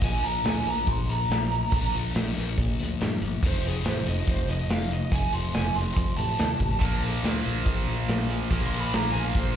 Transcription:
0.01 0.18 A#1 medium
0.01 1.68 A#2 medium
0.01 1.70 F3 medium
0.01 1.71 A#3 medium
0.01 1.72 D4 medium
0.01 0.24 G#5 medium
0.01 kick loud
0.01 closed hi-hat loud
0.23 0.39 A#1 medium
0.23 0.44 A#5 medium
0.23 closed hi-hat medium
0.45 0.60 D2 medium
0.45 0.66 G#5 medium
0.45 snare loud
0.45 closed hi-hat medium
0.66 0.81 A#1 medium
0.66 0.88 A#5 medium
0.66 closed hi-hat medium
0.87 1.03 A#1 medium
0.87 1.10 C6 medium
0.87 kick loud
0.87 closed hi-hat medium
1.09 1.24 A#1 medium
1.09 1.92 A#5 loud
1.09 closed hi-hat medium
1.30 1.61 A#1 medium
1.30 snare loud
1.30 closed hi-hat medium
1.52 closed hi-hat medium
1.70 1.88 A#1 medium
1.70 3.40 A#2 medium
1.70 3.43 F3 medium
1.70 3.41 A#3 medium
1.70 3.41 D4 medium
1.70 kick loud
1.70 closed hi-hat loud
1.94 2.10 A#1 medium
1.94 closed hi-hat medium
2.15 2.31 A#1 medium
2.15 snare loud
2.15 closed hi-hat medium
2.37 2.53 A#1 medium
2.37 snare soft
2.37 closed hi-hat medium
2.58 2.73 A#2 medium
2.58 kick loud
2.58 closed hi-hat medium
2.79 2.95 D2 medium
2.79 closed hi-hat medium
3.01 3.17 G2 medium
3.01 snare loud
3.01 closed hi-hat medium
3.21 3.37 G1 medium
3.21 closed hi-hat medium
3.42 3.58 F1 medium
3.42 5.09 F2 medium
3.42 5.10 C3 medium
3.42 5.12 F3 medium
3.42 5.12 A3 medium
3.42 5.12 C4 medium
3.42 kick loud
3.42 closed hi-hat loud
3.47 3.65 C5 loud
3.64 3.79 F1 medium
3.64 3.86 G#4 medium
3.64 closed hi-hat medium
3.85 4.00 A1 medium
3.85 4.07 C5 medium
3.85 snare loud
3.85 closed hi-hat medium
4.06 4.22 F1 medium
4.06 4.28 D#5 medium
4.06 closed hi-hat medium
4.28 4.43 F1 medium
4.28 4.49 C5 medium
4.28 kick loud
4.28 closed hi-hat medium
4.49 4.64 F1 medium
4.49 4.70 D#5 medium
4.49 closed hi-hat medium
4.69 5.01 F1 medium
4.69 4.91 F5 medium
4.69 snare loud
4.69 closed hi-hat medium
4.91 5.12 D#5 medium
4.91 closed hi-hat medium
5.11 5.27 F1 medium
5.11 6.80 F2 medium
5.11 6.80 C3 medium
5.11 6.81 F3 medium
5.11 6.81 A3 medium
5.11 6.81 C4 medium
5.11 5.33 G#5 medium
5.11 kick loud
5.11 closed hi-hat loud
5.32 5.49 F1 medium
5.32 5.54 C6 medium
5.32 closed hi-hat medium
5.54 5.70 F1 medium
5.54 5.75 G#5 medium
5.54 snare loud
5.54 closed hi-hat medium
5.75 5.91 F1 medium
5.75 5.93 C6 medium
5.75 snare soft
5.75 closed hi-hat medium
5.95 6.12 F2 medium
5.95 6.16 C6 medium
5.95 kick loud
5.95 closed hi-hat medium
6.17 6.34 A1 medium
6.17 7.00 A5 loud
6.17 closed hi-hat medium
6.38 6.54 D#2 medium
6.38 snare loud
6.38 closed hi-hat medium
6.60 6.76 A1 medium
6.60 kick medium
6.60 closed hi-hat medium
6.80 6.97 A#1 medium
6.80 8.48 A#2 medium
6.80 8.50 F3 medium
6.80 8.50 A#3 medium
6.80 8.50 D4 medium
6.80 kick loud
6.80 closed hi-hat loud
7.03 7.19 A#1 medium
7.03 closed hi-hat medium
7.23 7.39 D2 medium
7.23 snare loud
7.23 closed hi-hat medium
7.46 7.61 A#1 medium
7.46 closed hi-hat medium
7.66 7.82 A#1 medium
7.66 kick loud
7.66 closed hi-hat medium
7.88 8.03 A#1 medium
7.88 closed hi-hat medium
8.08 8.40 A#1 medium
8.08 snare loud
8.08 closed hi-hat medium
8.30 closed hi-hat medium
8.49 8.67 A#1 medium
8.49 9.56 A#2 medium
8.49 9.56 F3 medium
8.49 9.56 A#3 loud
8.49 9.56 D4 medium
8.49 kick loud
8.49 closed hi-hat loud
8.66 8.79 C6 loud
8.72 8.88 A#1 medium
8.72 closed hi-hat medium
8.80 8.94 B5 medium
8.93 9.10 A#1 medium
8.93 9.07 A#5 medium
8.93 snare loud
8.93 closed hi-hat medium
9.12 9.30 A#1 medium
9.12 9.23 G#5 medium
9.12 closed hi-hat medium
9.25 9.37 F5 medium
9.35 9.51 A#2 medium
9.35 kick loud
9.35 closed hi-hat medium
9.39 9.51 C5 medium

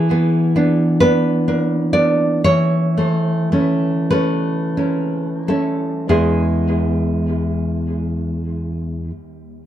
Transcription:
0.00 2.42 E3 medium
0.00 0.96 G#4 medium
0.11 0.54 B3 medium
0.56 1.00 B3 soft
0.56 1.01 D4 soft
1.00 1.92 B3 soft
1.00 1.47 D4 medium
1.00 1.91 B4 medium
1.48 1.92 D4 soft
1.93 2.41 B3 soft
1.93 2.41 D4 soft
1.93 2.43 D5 medium
2.44 6.08 E3 medium
2.44 4.09 C#5 medium
2.97 3.51 A3 soft
3.52 4.10 A3 soft
3.52 4.11 C#4 soft
4.11 5.47 A3 soft
4.11 4.76 C#4 soft
4.11 5.42 B4 medium
4.77 5.49 C#4 soft
5.48 6.09 A3 soft
5.48 6.09 C#4 soft
5.48 6.09 A4 soft
6.09 9.10 E2 soft
6.09 9.10 G#3 soft
6.09 9.10 B3 soft
6.09 9.11 E4 soft
6.09 9.10 G#4 soft

